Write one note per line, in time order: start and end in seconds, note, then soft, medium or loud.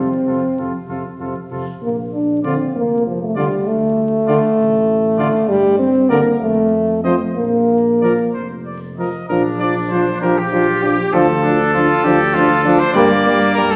0.00 0.10 F2 soft
0.00 0.10 C3 soft
0.00 0.90 C4 medium
0.00 0.10 F4 soft
0.26 0.41 F2 soft
0.26 0.42 C3 soft
0.26 0.41 F4 soft
0.26 0.40 A4 soft
0.58 0.73 F2 soft
0.58 0.73 C3 soft
0.58 0.73 F4 soft
0.58 0.72 A4 soft
0.89 1.03 F2 soft
0.89 1.03 C3 soft
0.89 1.03 F4 soft
0.89 1.03 A4 soft
1.20 1.34 F2 soft
1.20 1.35 C3 soft
1.20 1.34 F4 soft
1.20 1.34 A4 soft
1.50 1.65 F2 soft
1.50 1.66 C3 soft
1.50 1.65 F4 soft
1.50 1.65 A4 soft
1.82 2.60 A#1 medium
1.82 1.96 A#3 medium
2.13 2.43 D4 medium
2.43 2.56 D3 soft
2.43 2.74 C4 medium
2.43 2.55 F4 soft
2.43 2.54 D5 soft
2.75 3.51 F1 medium
2.75 3.06 A#3 medium
3.07 3.21 F3 medium
3.23 3.38 A3 medium
3.35 3.47 D3 medium
3.35 3.69 G3 medium
3.35 3.47 F4 soft
3.35 3.46 D5 medium
3.66 4.42 D2 medium
3.66 5.50 A3 loud
4.27 4.38 D3 medium
4.27 4.38 F4 medium
4.27 4.38 D5 medium
4.57 5.33 A1 medium
5.18 5.28 D3 medium
5.18 5.28 F4 medium
5.18 5.28 D5 medium
5.48 6.25 G2 medium
5.48 5.78 G3 loud
5.79 6.11 C4 medium
6.09 6.21 D3 medium
6.09 6.40 A#3 medium
6.09 6.21 A#4 medium
6.09 6.20 D5 medium
6.40 7.20 F2 medium
6.40 7.03 A3 medium
7.04 7.16 F3 medium
7.04 7.19 C4 medium
7.04 7.15 C5 medium
7.04 7.15 D#5 medium
7.36 8.17 A#1 medium
7.36 8.31 A#3 medium
8.01 8.13 F3 medium
8.01 8.14 A#4 medium
8.01 8.12 D5 soft
8.33 9.13 F1 soft
8.33 8.48 C5 medium
8.65 8.80 D5 soft
8.98 9.09 F3 soft
8.98 9.10 A#4 soft
8.98 9.28 D#5 medium
9.29 10.11 A#1 medium
9.29 9.44 F3 medium
9.29 10.18 D4 medium
9.29 9.44 D4 medium
9.29 9.43 A#4 medium
9.59 9.75 F3 medium
9.59 9.74 D4 medium
9.59 9.73 D5 medium
9.90 10.05 F3 medium
9.90 10.05 D4 medium
9.90 10.21 C5 medium
10.21 11.03 A#1 medium
10.21 10.36 F3 medium
10.21 10.35 D4 medium
10.21 11.16 G4 medium
10.21 10.40 A#4 medium
10.38 10.52 G4 medium
10.52 10.67 F3 medium
10.52 10.66 D4 medium
10.52 10.84 F4 medium
10.82 10.97 F3 medium
10.82 10.97 D4 medium
10.82 11.15 G4 loud
11.13 11.94 D2 medium
11.13 11.27 F3 medium
11.13 11.27 D4 medium
11.13 11.44 F4 medium
11.13 12.81 A4 loud
11.43 11.58 F3 medium
11.43 11.73 D4 medium
11.43 11.58 D4 medium
11.73 11.88 F3 medium
11.73 11.88 D4 medium
11.73 12.05 F4 medium
12.04 12.84 D2 medium
12.04 12.18 F3 medium
12.04 12.18 D4 medium
12.04 12.36 G4 loud
12.34 12.48 F3 medium
12.34 12.48 D4 medium
12.34 12.64 F4 loud
12.64 12.78 F3 medium
12.64 12.96 D4 medium
12.64 12.78 D4 medium
12.79 12.93 C5 loud
12.94 13.76 G2 loud
12.94 13.08 G3 loud
12.94 13.76 A#3 loud
12.94 13.10 A#3 loud
12.94 13.54 D5 loud
13.25 13.39 G3 medium
13.25 13.40 A#3 medium
13.55 13.71 G3 medium
13.55 13.71 A#3 medium
13.55 13.72 A#4 loud
13.71 13.76 A4 loud